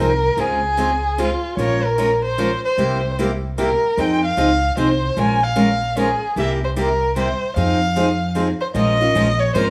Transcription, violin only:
0.00 A#4
0.39 G#4
1.20 F4
1.58 C#5
1.85 A#4
2.25 C5
2.65 C5
3.59 A#4
4.00 G5
4.26 F5
4.79 C5
5.19 G#5
5.43 F5
5.99 G#4
6.39 E5
6.64 C5
6.79 A#4
7.18 C5
7.57 F5
8.61 C5
8.75 D#5
9.39 C#5
9.54 C5

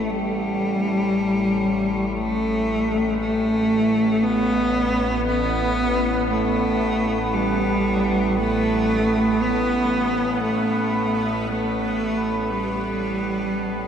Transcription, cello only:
Already playing: A3
0.10 G3
2.17 A3
3.20 A3
4.23 B3
5.28 B3
6.31 A3
7.34 G3
8.37 A3
9.42 B3
10.43 A3
11.49 A3
12.52 G3

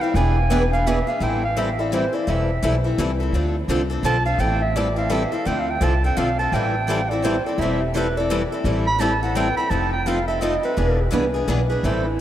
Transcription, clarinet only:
0.01 F5
0.15 G#5
0.73 F5
0.87 E5
1.08 F5
1.23 G5
1.44 F5
1.59 E5
1.80 D5
1.94 C5
2.14 D5
2.29 E5
4.05 A5
4.26 F5
4.40 G5
4.62 E5
4.76 D5
4.98 F5
5.12 E5
5.34 F5
5.46 G5
5.59 F5
5.70 G5
5.83 A5
6.05 G5
6.18 F5
6.39 A5
6.53 G5
7.09 D5
7.24 C5
7.46 D5
7.59 E5
7.82 G4
7.95 B4
8.17 D5
8.87 B5
9.00 A5
9.22 F#5
9.35 G5
9.56 B5
9.70 A5
9.93 G5
10.07 F5
10.27 E5
10.42 D#5
10.65 B4
11.69 B4
11.85 C5
12.06 E4

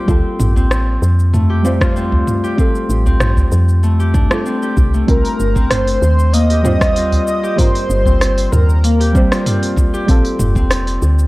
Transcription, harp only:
Already playing: G3 A#3 F4 G4
0.08 C4
0.56 C4
1.33 A3
1.50 G4
1.65 G3
1.81 F4
1.96 C4
2.44 G4
2.58 C4
3.06 C4
3.83 A3
4.00 G4
4.14 D4
4.31 G4
4.46 C4
4.62 G4
4.94 A3
5.08 C4
5.56 C4
6.33 A#3
6.50 G4
6.64 G3
6.81 F4
6.95 C4
7.43 G4
7.58 C4
8.06 C4
8.83 A#3
9.00 G4
9.15 G3
9.31 F4
9.46 C4
9.94 G4
10.08 C4
10.56 C4

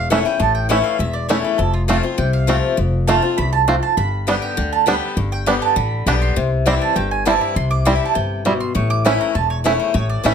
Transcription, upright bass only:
Already playing: E1
0.40 A1
0.99 E1
1.59 F1
2.18 C2
2.78 F1
3.38 C2
3.97 G1
4.58 D2
5.17 G1
5.76 A1
6.06 B1
6.37 C2
6.96 G1
7.56 C2
8.16 G1
8.75 A1
9.35 E1
9.94 A1
10.25 A1

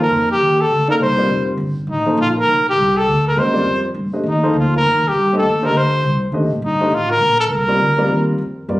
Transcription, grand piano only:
Already playing: F3 A#3 D#4 A4 C5
0.88 A#3 D#4 A4 D5 F5
1.17 G3 C4 F4 A#4 D5
2.06 F3 A#3 D#4 A4 C5
3.36 G#3 C#4 F#4 B4 D#5
3.53 G3 C4 F4 A#4 D5
4.13 A3 D4 G4 C5 D#5
4.43 F3 A#3 D#4 A4 C5
5.32 A3 D4 G4 C5 D#5
5.62 D3 A3 G4 C5 D#5
6.33 A3 D4 G4 C5 D#5
6.80 A3 D4 G4 C5 D#5
7.68 G3 C4 F4 A#4 D5
7.98 G3 C4 F4 A#4 D5
8.68 G3 C4 F4 A#4 D5

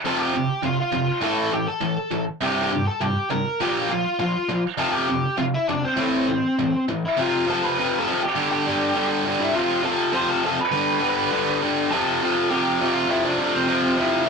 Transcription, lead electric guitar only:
0.06 A4 A5
0.18 G4 G5
0.64 F4 F5
0.80 F4 F5
1.23 A4 A5
1.53 G4 G5
1.67 A4 A5
2.43 G4 G5
2.63 G4 G5
2.87 A4 A5
3.01 G4 G5
3.30 A#4 A#5
3.62 G4 G5
3.92 F4 F5
4.20 F4 F5
4.79 A4 A5
4.92 G4 G5
5.38 F4 F5
5.54 E4 E5
5.68 D4 D5
5.84 C4 C5
7.05 E4 E5
7.20 F4 F5
7.50 A4 A5
7.62 B4 B5
8.00 A4 A5
8.24 G4 G5
8.52 G4 G5
9.40 E4 E5
9.54 F4 F5
9.84 A4 A5
10.13 C5 C6
10.29 A4 A5
10.46 A4 A5
10.61 B4 B5
11.91 A4 A5
12.50 G4 G5
12.94 F4 F5
13.11 E4 E5
13.25 D4 D5
13.55 C4 C5
14.00 E4 E5

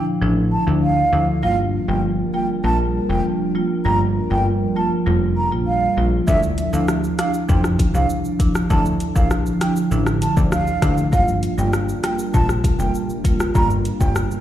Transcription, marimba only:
Already playing: F3 D4 E4
0.21 F3 D4 E4
0.67 F3 D4 E4
1.12 F3 D4 E4
1.43 G3 A#3 F4
1.88 G3 A#3 F4
2.34 G3 A#3 F4
2.64 G3 A#3 F4
3.09 G3 A#3 F4
3.55 G3 A#3 F4
3.85 G3 A#3 F4
4.31 G3 A#3 F4
4.76 G3 A#3 F4
5.06 G3 A#3 F4
5.52 G3 A#3 F4
5.97 G3 A#3 F4
6.27 F3 D4 E4
6.73 F3 D4 E4
7.19 F3 D4 E4
7.49 F3 D4 E4
7.94 F3 D4 E4
8.39 F3 D4 E4
8.70 F3 D4 E4
9.15 F3 D4 E4
9.61 F3 D4 E4
9.91 F3 D4 E4
10.36 F3 D4 E4
10.82 F3 D4 E4
11.12 G3 A#3 F4
11.58 G3 A#3 F4
12.03 G3 A#3 F4
12.34 G3 A#3 F4
12.79 G3 A#3 F4
13.25 G3 A#3 F4
13.55 G3 A#3 F4
14.00 G3 A#3 F4

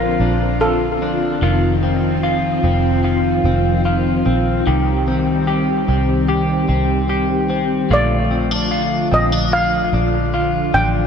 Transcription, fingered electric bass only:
Already playing: A#1
0.19 A#1
1.41 F1
2.63 F1
3.44 F1
4.26 A#1
4.67 C2
5.88 C2
6.68 C2
7.90 A#1
9.12 A#1
9.92 A#1
10.74 A1

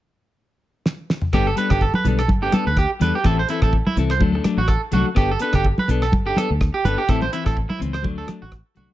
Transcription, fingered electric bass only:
1.34 G1
1.71 G1
2.05 B1
2.29 G1
2.66 D2
3.01 E2
3.25 A1
3.62 A1
3.96 C2
4.20 D2
4.57 A1
4.93 C2
5.16 G1
5.54 G1
5.89 B1
6.13 G1
6.50 D2
6.84 G1
7.09 A1
7.46 A1
7.81 C#2
8.05 D2
8.42 A1
8.77 C2

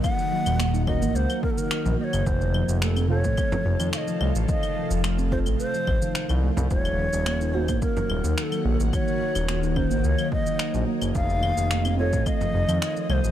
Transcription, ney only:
0.03 F#5
0.88 D#5
1.16 C5
1.43 A#4
1.51 A4
1.58 A#4
1.99 D#5
2.04 C#5
2.26 C5
2.82 A4
3.10 C#5
3.94 D#5 F5
4.49 D#5
5.32 C5
5.59 C5
6.71 C#5
7.54 C5
7.82 A#4
8.38 A#4
8.43 A4
8.93 C#5
9.76 C5
10.05 C#5
10.33 D#5
11.16 F5
11.99 C#5
12.26 D#5
13.10 C5 C#5

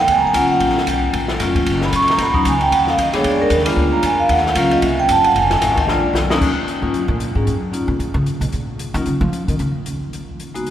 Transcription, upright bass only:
0.07 D#2
0.16 C#2
0.25 A#1
0.33 C#2
0.48 muted upright bass stroke
0.60 A#1
0.87 B1
1.13 A#1
1.40 F1
1.66 F#1
1.92 A#1
2.08 muted upright bass stroke
2.18 B1
2.45 C#2
2.72 D#2
2.98 D#2
3.13 muted upright bass stroke
3.24 F2
3.50 D#2
3.76 D2
4.03 F2
4.29 D#2
4.55 C#2
4.82 C2
5.08 G1
5.35 F1
5.61 G#1
5.87 A#1
6.13 B1
6.82 G#2
6.94 F#2
7.08 A#2
7.35 G#2
7.47 F#2
7.88 B2
7.99 A#2
8.14 C#3
8.41 B2
8.53 A#2
8.94 D#3
9.06 C#3
9.21 F3
9.48 D#3
9.60 C#3

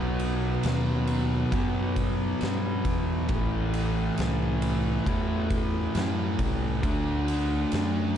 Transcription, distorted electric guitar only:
Already playing: B2 F#3 B3
1.52 B2 F#3 B3
3.29 A2 E3 A3
5.06 A2 E3 A3
6.83 D3 A3 D4

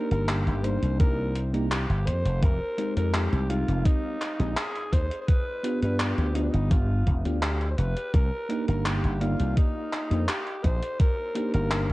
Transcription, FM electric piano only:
Already playing: A#3 D4 D#4 G4
0.63 A#3 D4 D#4 G4
1.53 A#3 D4 D#4 G4
2.78 G#3 C4 D#4 G4
3.49 G#3 C4 D#4 G4
4.39 G#3 C4 D#4 G4
5.63 B3 D4 F4 G4
6.35 B3 D4 F4 G4
7.24 B3 D4 F4 G4
8.49 A#3 D4 D#4 G4
9.20 A#3 D#4 G4 D5
10.10 A#3 D4 D#4 G4
11.35 A#3 D4 D#4 G4

